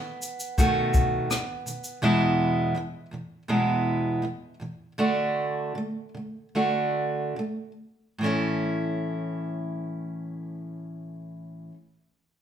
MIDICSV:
0, 0, Header, 1, 3, 480
1, 0, Start_track
1, 0, Key_signature, 3, "major"
1, 0, Tempo, 727273
1, 1339, Time_signature, 4, 2, 24, 8
1, 2304, Tempo, 757576
1, 3744, Tempo, 803213
1, 4704, Tempo, 852273
1, 7545, End_track
2, 0, Start_track
2, 0, Title_t, "Steel-string acoustic guitar"
2, 0, Program_c, 0, 25
2, 0, Note_on_c, 0, 47, 50
2, 0, Note_on_c, 0, 51, 68
2, 0, Note_on_c, 0, 59, 79
2, 94, Note_off_c, 0, 47, 0
2, 102, Note_off_c, 0, 51, 0
2, 381, Note_on_c, 0, 47, 64
2, 383, Note_on_c, 0, 51, 68
2, 387, Note_off_c, 0, 59, 0
2, 388, Note_on_c, 0, 57, 77
2, 390, Note_on_c, 0, 59, 69
2, 392, Note_on_c, 0, 66, 78
2, 850, Note_off_c, 0, 47, 0
2, 858, Note_on_c, 0, 47, 57
2, 861, Note_off_c, 0, 51, 0
2, 864, Note_off_c, 0, 57, 0
2, 865, Note_off_c, 0, 66, 0
2, 874, Note_on_c, 0, 51, 67
2, 1050, Note_off_c, 0, 47, 0
2, 1059, Note_off_c, 0, 51, 0
2, 1095, Note_on_c, 0, 47, 43
2, 1110, Note_on_c, 0, 51, 46
2, 1289, Note_off_c, 0, 47, 0
2, 1296, Note_off_c, 0, 51, 0
2, 1332, Note_on_c, 0, 40, 73
2, 1336, Note_on_c, 0, 47, 79
2, 1338, Note_on_c, 0, 52, 87
2, 1341, Note_off_c, 0, 59, 0
2, 1342, Note_on_c, 0, 56, 88
2, 1344, Note_on_c, 0, 59, 88
2, 1344, Note_on_c, 0, 64, 82
2, 1805, Note_off_c, 0, 40, 0
2, 1813, Note_on_c, 0, 40, 54
2, 1814, Note_off_c, 0, 47, 0
2, 1818, Note_off_c, 0, 52, 0
2, 1821, Note_off_c, 0, 56, 0
2, 1821, Note_off_c, 0, 59, 0
2, 1822, Note_off_c, 0, 64, 0
2, 1822, Note_on_c, 0, 47, 55
2, 1831, Note_on_c, 0, 52, 59
2, 2009, Note_off_c, 0, 40, 0
2, 2013, Note_off_c, 0, 47, 0
2, 2018, Note_off_c, 0, 52, 0
2, 2055, Note_on_c, 0, 40, 40
2, 2064, Note_on_c, 0, 47, 42
2, 2071, Note_on_c, 0, 52, 43
2, 2252, Note_off_c, 0, 40, 0
2, 2256, Note_off_c, 0, 47, 0
2, 2260, Note_off_c, 0, 52, 0
2, 2298, Note_on_c, 0, 40, 66
2, 2301, Note_on_c, 0, 47, 64
2, 2304, Note_on_c, 0, 52, 65
2, 2305, Note_on_c, 0, 56, 76
2, 2307, Note_on_c, 0, 59, 74
2, 2310, Note_on_c, 0, 64, 66
2, 2759, Note_off_c, 0, 40, 0
2, 2766, Note_on_c, 0, 40, 55
2, 2767, Note_off_c, 0, 47, 0
2, 2775, Note_off_c, 0, 52, 0
2, 2775, Note_off_c, 0, 56, 0
2, 2775, Note_on_c, 0, 47, 50
2, 2776, Note_off_c, 0, 59, 0
2, 2777, Note_off_c, 0, 64, 0
2, 2782, Note_on_c, 0, 52, 54
2, 2961, Note_off_c, 0, 40, 0
2, 2965, Note_off_c, 0, 47, 0
2, 2969, Note_off_c, 0, 52, 0
2, 3005, Note_on_c, 0, 40, 40
2, 3014, Note_on_c, 0, 47, 45
2, 3020, Note_on_c, 0, 52, 43
2, 3201, Note_off_c, 0, 40, 0
2, 3206, Note_off_c, 0, 47, 0
2, 3209, Note_off_c, 0, 52, 0
2, 3247, Note_on_c, 0, 50, 70
2, 3252, Note_on_c, 0, 57, 78
2, 3255, Note_on_c, 0, 62, 70
2, 3258, Note_on_c, 0, 66, 75
2, 3728, Note_off_c, 0, 50, 0
2, 3735, Note_on_c, 0, 50, 54
2, 3744, Note_off_c, 0, 62, 0
2, 3745, Note_off_c, 0, 66, 0
2, 3749, Note_off_c, 0, 57, 0
2, 3752, Note_on_c, 0, 57, 55
2, 3927, Note_off_c, 0, 50, 0
2, 3935, Note_off_c, 0, 57, 0
2, 3972, Note_on_c, 0, 50, 39
2, 3986, Note_on_c, 0, 57, 36
2, 4165, Note_off_c, 0, 50, 0
2, 4173, Note_off_c, 0, 57, 0
2, 4213, Note_on_c, 0, 50, 59
2, 4216, Note_on_c, 0, 57, 62
2, 4219, Note_on_c, 0, 62, 64
2, 4222, Note_on_c, 0, 66, 62
2, 4693, Note_off_c, 0, 50, 0
2, 4700, Note_on_c, 0, 50, 50
2, 4704, Note_off_c, 0, 62, 0
2, 4706, Note_off_c, 0, 66, 0
2, 4713, Note_off_c, 0, 57, 0
2, 4715, Note_on_c, 0, 57, 54
2, 4889, Note_off_c, 0, 50, 0
2, 4896, Note_off_c, 0, 57, 0
2, 5163, Note_on_c, 0, 45, 60
2, 5176, Note_on_c, 0, 52, 63
2, 5187, Note_on_c, 0, 57, 63
2, 5194, Note_on_c, 0, 61, 75
2, 5205, Note_on_c, 0, 64, 71
2, 7138, Note_off_c, 0, 45, 0
2, 7152, Note_off_c, 0, 52, 0
2, 7163, Note_off_c, 0, 57, 0
2, 7170, Note_off_c, 0, 61, 0
2, 7181, Note_off_c, 0, 64, 0
2, 7545, End_track
3, 0, Start_track
3, 0, Title_t, "Drums"
3, 145, Note_on_c, 9, 82, 51
3, 211, Note_off_c, 9, 82, 0
3, 262, Note_on_c, 9, 82, 51
3, 328, Note_off_c, 9, 82, 0
3, 383, Note_on_c, 9, 36, 76
3, 385, Note_on_c, 9, 82, 61
3, 449, Note_off_c, 9, 36, 0
3, 451, Note_off_c, 9, 82, 0
3, 619, Note_on_c, 9, 82, 43
3, 623, Note_on_c, 9, 36, 73
3, 685, Note_off_c, 9, 82, 0
3, 689, Note_off_c, 9, 36, 0
3, 863, Note_on_c, 9, 37, 84
3, 863, Note_on_c, 9, 82, 63
3, 929, Note_off_c, 9, 37, 0
3, 929, Note_off_c, 9, 82, 0
3, 1102, Note_on_c, 9, 82, 43
3, 1168, Note_off_c, 9, 82, 0
3, 1214, Note_on_c, 9, 82, 45
3, 1280, Note_off_c, 9, 82, 0
3, 7545, End_track
0, 0, End_of_file